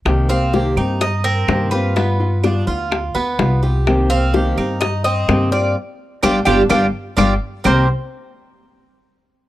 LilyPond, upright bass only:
\new Staff \with { instrumentName = "Upright bass" } { \clef bass \time 4/4 \key c \minor \tempo 4 = 127 c,4. g,4. g,4~ | g,4. d,4 d,8 c,4~ | c,4. g,4. g,4 | r4 g,,8 g,,8 g,,8 r8 g,,8 r8 |
c,8 r2. r8 | }